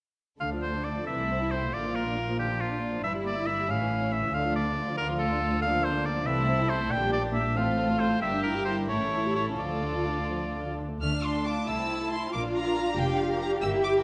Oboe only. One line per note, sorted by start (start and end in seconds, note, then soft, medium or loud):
0.40 0.50 F5 medium
0.62 0.85 C5 soft
0.84 1.06 D5 soft
1.07 1.52 E5 medium
1.51 1.75 C5 medium
1.73 1.97 D5 medium
1.95 2.39 A#4 medium
2.39 2.62 G4 medium
2.60 3.03 F4 soft
3.03 3.13 E5 medium
3.26 3.48 D5 medium
3.47 3.71 E5 medium
3.70 4.13 F5 medium
4.12 4.35 E5 medium
4.34 4.55 F5 medium
4.56 4.97 D5 medium
4.97 5.07 A#4 medium
5.19 5.61 A4 medium
5.62 5.86 F5 medium
5.84 6.07 C5 medium
6.05 6.28 D5 medium
6.26 6.71 E5 medium
6.69 6.93 C5 medium
6.91 7.12 G5 medium
7.13 7.23 D5 medium
7.34 7.58 E5 medium
7.56 8.01 F5 medium
8.00 8.21 C5 medium
8.21 8.43 E5 medium
8.43 8.64 A#4 medium
8.65 8.75 C5 medium
8.88 9.34 C#5 medium
9.36 9.46 C#5 medium
9.59 10.75 D5 medium